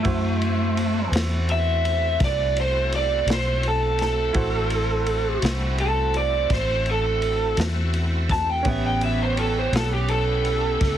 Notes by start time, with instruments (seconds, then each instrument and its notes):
Already playing: lead electric guitar A3
0.03 fingered electric bass F#2, tonewheel organ A3 C4 E4 F#4, grand piano E4 F#4 C5, kick, ride
0.42 ride
0.77 ride
1.12 fingered electric bass E2, ride
1.16 snare
1.49 lead electric guitar E5, ride
1.85 ride
2.20 fingered electric bass C2, lead electric guitar D5, kick, snare, ride
2.57 lead electric guitar C5, ride
2.92 lead electric guitar D5, ride
3.26 fingered electric bass B1, ride
3.30 lead electric guitar C5, snare
3.63 ride
3.68 lead electric guitar A4
3.99 snare, ride
4.03 lead electric guitar A4
4.33 fingered electric bass A1, tonewheel organ A3 C4 E4 F#4, grand piano E4 F#4 C5, kick, ride
4.70 ride
5.06 ride
5.42 fingered electric bass C2, snare, ride
5.78 lead electric guitar A4, ride
6.14 lead electric guitar D5, ride
6.50 fingered electric bass A1, lead electric guitar C5, kick, snare, ride
6.86 ride
6.91 lead electric guitar A4
7.22 ride
7.57 fingered electric bass E2, snare, ride
7.94 ride
8.29 lead electric guitar A5, kick, snare, ride
8.50 lead electric guitar G5
8.63 fingered electric bass A1, tonewheel organ B3 C#4, grand piano B3 C#4 G4, kick, ride
8.67 tonewheel organ E4 G4, lead electric guitar E5
8.86 lead electric guitar G5
9.01 lead electric guitar E5, ride
9.23 lead electric guitar C5
9.37 lead electric guitar A4, ride
9.59 lead electric guitar C5
9.72 fingered electric bass B1, lead electric guitar A4, snare, ride
9.94 lead electric guitar G4
10.08 lead electric guitar A4, ride
10.45 ride
10.81 fingered electric bass C#2, kick, snare, ride